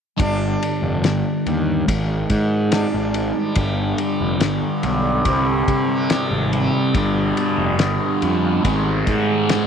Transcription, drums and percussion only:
0.20 kick, ride
0.63 ride
1.04 snare, ride
1.47 ride
1.88 kick, ride
2.30 kick, ride
2.72 snare, ride
3.14 ride
3.55 kick, ride
3.98 ride
4.40 snare, ride
4.83 ride
5.25 kick, ride
5.68 kick, ride
6.10 snare, ride
6.53 ride
6.95 kick, ride
7.37 ride
7.79 snare, ride
8.22 ride
8.65 kick, ride
9.07 kick, ride
9.49 snare, ride

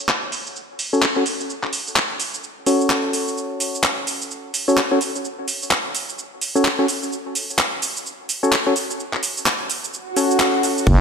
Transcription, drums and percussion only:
0.09 clap, shaker
0.32 open hi-hat, shaker
0.47 shaker
0.56 shaker
0.79 open hi-hat, shaker
0.94 shaker
1.02 clap, shaker
1.26 open hi-hat, shaker
1.41 shaker
1.50 shaker
1.63 clap
1.73 open hi-hat, shaker
1.87 shaker
1.96 clap, shaker
2.20 open hi-hat, shaker
2.34 shaker
2.44 shaker
2.66 open hi-hat, shaker
2.81 shaker
2.90 clap, shaker
3.13 open hi-hat, shaker
3.28 shaker
3.37 shaker
3.60 open hi-hat, shaker
3.75 shaker
3.84 clap, shaker
4.07 open hi-hat, shaker
4.22 shaker
4.31 shaker
4.54 open hi-hat, shaker
4.69 shaker
4.77 clap, shaker
5.01 open hi-hat, shaker
5.16 shaker
5.25 shaker
5.48 open hi-hat, shaker
5.62 shaker
5.71 clap, shaker
5.95 open hi-hat, shaker
6.09 shaker
6.19 shaker
6.41 open hi-hat, shaker
6.56 shaker
6.65 clap, shaker
6.88 open hi-hat, shaker
7.03 shaker
7.12 shaker
7.35 open hi-hat, shaker
7.50 shaker
7.59 clap, shaker
7.82 open hi-hat, shaker
7.97 shaker
8.06 shaker
8.29 open hi-hat, shaker
8.44 shaker
8.53 clap, shaker
8.76 open hi-hat, shaker
8.91 shaker
9.00 shaker
9.13 clap
9.23 open hi-hat, shaker
9.37 shaker
9.46 clap, shaker
9.70 open hi-hat, shaker
9.84 shaker
9.94 shaker
10.16 open hi-hat, shaker
10.31 shaker
10.40 clap, shaker
10.63 open hi-hat, shaker
10.78 shaker
10.87 kick, crash, shaker

